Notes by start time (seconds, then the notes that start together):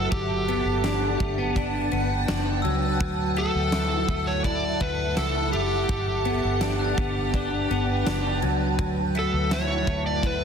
Already playing: F#3 A3 E4 A4 F#5 A5 F#6
0.12 G1 G4 B4 G5, kick, ride
0.48 B3, ride
0.65 G1
0.84 D4, snare, ride, tambourine
1.20 G1 A3, kick, ride
1.38 B3
1.56 D4, kick, ride
1.92 G1 B3, ride
2.28 F#1 D4, snare, ride, tambourine
2.62 C#2 F#3 E6, ride
3.00 D2 F#3 A4 E5, kick, ride
3.36 A3 A4, ride
3.55 D2
3.72 E4, snare, ride, tambourine
4.09 D2 A3, kick, ride
4.27 C#5
4.44 E4 D5, kick, ride
4.80 D2 A3 B4, kick, ride
5.17 C#2 E4 A4, snare, ride, tambourine
5.53 F#1 G4, ride
5.89 G1 B4 G5, kick, ride
6.25 B3, ride
6.45 G1
6.61 D4, snare, ride, tambourine
6.79 F#6
6.84 A6
6.98 G1 B3, kick, ride
7.34 D4, kick, ride
7.70 G1 B3, ride
8.06 F#1 D4, snare, ride, tambourine
8.42 C#2 F#3, ride
8.79 D2 F#3 A4 E5, kick, ride
9.15 A3 A4 B6, ride
9.33 D2
9.51 E4 C#5, snare, ride, tambourine
9.87 D2 A3, kick, ride
10.06 D5
10.23 E4 B4, kick, ride